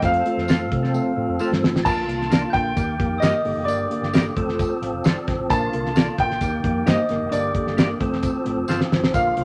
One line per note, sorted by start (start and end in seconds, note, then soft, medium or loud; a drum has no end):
0.02 0.20 F2 loud
0.02 1.84 F3 medium
0.02 0.20 A3 medium
0.02 0.20 C4 medium
0.02 1.83 C4 medium
0.02 0.21 F4 medium
0.02 1.83 A4 medium
0.02 0.21 A4 loud
0.02 1.37 F5 loud
0.02 kick loud
0.02 closed hi-hat medium
0.02 tambourine medium
0.14 closed hi-hat medium
0.25 0.43 A3 medium
0.25 0.44 C4 medium
0.25 0.44 F4 medium
0.25 0.44 A4 medium
0.25 closed hi-hat medium
0.37 0.72 F2 medium
0.37 snare soft
0.48 0.66 A3 medium
0.48 0.66 C4 medium
0.48 0.59 C4 medium
0.48 0.59 F4 loud
0.48 0.67 A4 medium
0.48 0.59 A4 loud
0.48 snare loud
0.48 closed hi-hat medium
0.48 tambourine medium
0.71 0.98 C3 medium
0.71 0.89 A3 medium
0.71 0.89 C4 medium
0.71 0.89 F4 medium
0.71 0.90 A4 loud
0.71 kick medium
0.71 closed hi-hat medium
0.83 0.91 C4 soft
0.83 0.91 F4 soft
0.83 0.91 A4 medium
0.83 snare soft
0.93 1.12 A3 loud
0.93 1.12 C4 loud
0.93 1.12 F4 loud
0.93 1.12 A4 loud
0.93 tambourine medium
1.16 1.26 A2 medium
1.16 1.35 A3 medium
1.16 1.35 C4 medium
1.16 1.35 F4 medium
1.16 1.35 A4 medium
1.29 1.37 F2 medium
1.39 1.58 A3 medium
1.39 1.50 C4 medium
1.39 1.58 C4 medium
1.39 1.50 F4 medium
1.39 1.58 F4 medium
1.39 1.58 A4 medium
1.39 1.51 A4 medium
1.39 tambourine medium
1.52 1.60 G2 medium
1.52 snare medium
1.62 1.71 G1 medium
1.62 1.80 A3 medium
1.62 1.80 C4 medium
1.62 1.81 F4 medium
1.62 1.81 A4 medium
1.62 snare loud
1.74 1.83 A1 medium
1.74 snare medium
1.83 2.03 A#1 loud
1.83 2.76 D3 medium
1.83 2.03 A#3 medium
1.83 2.75 A#3 medium
1.83 2.03 D4 medium
1.83 2.03 F4 medium
1.83 2.76 F4 medium
1.83 2.04 A#4 medium
1.83 2.56 A5 loud
1.83 2.49 A6 medium
1.83 kick loud
1.83 crash loud
1.83 tambourine medium
2.08 2.43 C2 medium
2.08 2.26 A#3 medium
2.08 2.26 D4 medium
2.08 2.26 F4 medium
2.08 2.26 A4 medium
2.08 closed hi-hat medium
2.21 snare soft
2.30 2.49 A#3 medium
2.30 2.49 D4 medium
2.30 2.41 F4 medium
2.30 2.49 F4 medium
2.30 2.49 A#4 medium
2.30 2.41 A#4 medium
2.30 2.42 D5 medium
2.30 snare loud
2.30 closed hi-hat medium
2.30 tambourine medium
2.50 2.71 A#3 medium
2.50 2.71 D4 medium
2.50 2.72 F4 medium
2.50 2.72 A#4 medium
2.50 3.24 G5 loud
2.50 3.16 G6 medium
2.50 closed hi-hat medium
2.54 2.72 A#1 medium
2.54 kick medium
2.75 3.00 D#2 loud
2.75 3.67 D#3 medium
2.75 2.94 A#3 medium
2.75 4.34 A#3 medium
2.75 2.94 D#4 medium
2.75 2.94 G4 medium
2.75 4.35 G4 medium
2.75 2.94 A#4 medium
2.75 kick medium
2.75 closed hi-hat medium
2.75 tambourine medium
2.99 3.17 F2 medium
2.99 3.17 A#3 medium
2.99 3.17 D#4 medium
2.99 3.17 G4 medium
2.99 3.18 A#4 medium
2.99 kick medium
2.99 closed hi-hat medium
3.18 3.31 G2 medium
3.18 3.40 A#3 medium
3.18 3.40 D#4 medium
3.18 3.40 G4 medium
3.18 3.40 A#4 loud
3.18 3.63 D#5 medium
3.18 3.62 D#6 medium
3.18 tambourine medium
3.22 3.33 G4 medium
3.22 3.33 A#4 loud
3.22 3.33 D#5 medium
3.22 snare loud
3.22 closed hi-hat medium
3.44 3.54 G1 medium
3.44 3.63 A#3 medium
3.44 3.63 D#4 medium
3.44 3.63 G4 medium
3.44 3.63 A4 loud
3.44 open hi-hat medium
3.57 3.68 F1 medium
3.64 3.85 G1 loud
3.64 4.36 D3 medium
3.64 3.85 A#3 medium
3.64 3.85 D4 medium
3.64 3.86 G4 medium
3.64 3.86 A#4 loud
3.64 4.31 D5 medium
3.64 4.30 D6 medium
3.64 closed hi-hat medium
3.64 tambourine medium
3.90 4.08 A#3 medium
3.90 4.08 D4 medium
3.90 4.09 G4 medium
3.90 4.09 A#4 medium
3.90 closed hi-hat medium
4.02 4.28 G1 medium
4.02 snare soft
4.13 4.31 A#3 medium
4.13 4.31 D4 medium
4.13 4.24 G4 medium
4.13 4.31 G4 medium
4.13 4.32 A4 medium
4.13 4.24 A#4 medium
4.13 4.24 D5 loud
4.13 snare loud
4.13 closed hi-hat medium
4.13 tambourine medium
4.36 4.63 F1 loud
4.36 5.49 F3 medium
4.36 4.72 A3 medium
4.36 5.49 C4 medium
4.36 4.73 C4 medium
4.36 4.73 F4 medium
4.36 5.49 A4 medium
4.36 4.73 A4 loud
4.36 kick medium
4.36 closed hi-hat medium
4.49 snare soft
4.59 kick medium
4.59 closed hi-hat medium
4.59 tambourine medium
4.82 4.91 A1 medium
4.82 5.04 F5 medium
4.82 closed hi-hat medium
4.93 5.02 F1 medium
5.04 5.13 G1 loud
5.04 5.15 C4 medium
5.04 5.15 F4 medium
5.04 5.16 A4 loud
5.04 5.26 D5 medium
5.04 snare loud
5.04 closed hi-hat medium
5.04 tambourine medium
5.27 5.36 G1 loud
5.27 5.70 C5 medium
5.27 kick loud
5.27 snare soft
5.27 closed hi-hat medium
5.39 5.47 A1 medium
5.49 5.68 A#1 loud
5.49 6.40 D3 medium
5.49 5.68 A#3 medium
5.49 6.41 A#3 medium
5.49 5.68 D4 medium
5.49 5.68 F4 medium
5.49 6.41 F4 medium
5.49 5.68 A#4 medium
5.49 6.21 A5 loud
5.49 6.14 A6 medium
5.49 kick loud
5.49 closed hi-hat medium
5.49 tambourine medium
5.72 6.08 C2 medium
5.72 5.90 A#3 medium
5.72 5.90 D4 medium
5.72 5.91 F4 medium
5.72 5.91 A#4 medium
5.72 closed hi-hat medium
5.86 snare soft
5.95 6.13 A#3 medium
5.95 6.13 D4 medium
5.95 6.14 F4 medium
5.95 6.06 F4 medium
5.95 6.14 A4 medium
5.95 6.06 A#4 medium
5.95 6.07 D5 loud
5.95 snare loud
5.95 closed hi-hat medium
5.95 tambourine medium
6.18 6.36 A#1 medium
6.18 6.36 A#3 medium
6.18 6.36 D4 medium
6.18 6.36 F4 medium
6.18 6.36 A#4 medium
6.18 6.89 G5 loud
6.18 6.83 G6 medium
6.18 kick medium
6.18 closed hi-hat medium
6.31 snare soft
6.41 6.59 D#2 loud
6.41 7.32 D#3 medium
6.41 6.59 A#3 medium
6.41 7.30 A#3 medium
6.41 6.59 D#4 medium
6.41 6.59 G4 medium
6.41 7.31 G4 medium
6.41 6.59 A#4 medium
6.41 kick medium
6.41 closed hi-hat medium
6.41 tambourine medium
6.63 6.82 F2 medium
6.63 6.82 A#3 medium
6.63 6.82 D#4 medium
6.63 6.82 G4 medium
6.63 6.82 A#4 medium
6.63 kick medium
6.63 closed hi-hat medium
6.86 6.96 G2 loud
6.86 7.04 A#3 medium
6.86 7.04 D#4 medium
6.86 6.97 G4 medium
6.86 7.05 G4 medium
6.86 6.97 A#4 loud
6.86 7.05 C5 loud
6.86 6.98 D#5 medium
6.86 7.35 D#5 medium
6.86 7.29 D#6 medium
6.86 snare loud
6.86 closed hi-hat medium
6.86 tambourine medium
7.09 7.18 G1 medium
7.09 7.27 A#3 medium
7.09 7.28 D#4 medium
7.09 7.28 G4 medium
7.09 7.28 A#4 loud
7.09 snare soft
7.09 closed hi-hat medium
7.22 7.30 F1 medium
7.31 7.50 G1 loud
7.31 8.00 D3 medium
7.31 7.50 A#3 medium
7.31 8.00 A#3 medium
7.31 7.50 D4 medium
7.31 7.50 G4 medium
7.31 8.00 G4 medium
7.31 7.50 A#4 loud
7.31 7.96 D5 medium
7.31 7.96 D6 medium
7.31 closed hi-hat medium
7.31 tambourine medium
7.54 7.72 A#3 medium
7.54 7.73 D4 medium
7.54 7.73 G4 medium
7.54 7.73 A4 medium
7.54 kick medium
7.54 closed hi-hat medium
7.67 7.93 G1 loud
7.67 snare soft
7.77 7.95 A#3 medium
7.77 7.95 D4 medium
7.77 7.88 G4 medium
7.77 7.96 G4 medium
7.77 7.96 A#4 medium
7.77 7.88 A#4 medium
7.77 7.88 D5 loud
7.77 snare loud
7.77 closed hi-hat medium
7.77 tambourine medium
8.00 8.27 F1 loud
8.00 9.13 F3 medium
8.00 8.37 A3 medium
8.00 8.37 C4 medium
8.00 9.13 C4 medium
8.00 8.37 F4 medium
8.00 9.13 A4 medium
8.00 8.37 A4 loud
8.00 kick loud
8.00 closed hi-hat medium
8.13 snare soft
8.23 kick medium
8.23 closed hi-hat medium
8.23 tambourine medium
8.45 8.55 A1 medium
8.45 8.63 A3 medium
8.45 8.63 C4 medium
8.45 8.64 F4 medium
8.45 8.64 A4 loud
8.45 closed hi-hat medium
8.57 8.66 F1 medium
8.68 8.77 G1 medium
8.68 8.79 C4 medium
8.68 8.79 F4 medium
8.68 8.80 A4 loud
8.68 8.90 F5 medium
8.68 snare medium
8.68 tambourine medium
8.81 snare medium
8.91 9.00 G1 medium
8.91 9.35 C5 medium
8.91 snare medium
9.03 9.11 A1 medium
9.03 snare medium
9.14 9.32 A#1 loud
9.14 9.44 D3 medium
9.14 9.44 A#3 medium
9.14 9.32 A#3 medium
9.14 9.32 D4 medium
9.14 9.44 F4 medium
9.14 9.33 F4 medium
9.14 9.33 A#4 loud
9.14 9.44 F5 medium
9.14 9.44 F6 medium
9.14 kick loud
9.14 closed hi-hat medium
9.14 tambourine medium
9.37 9.44 C2 medium
9.37 9.44 A#3 medium
9.37 9.44 D4 medium
9.37 9.44 F4 medium
9.37 9.44 C5 medium
9.37 closed hi-hat medium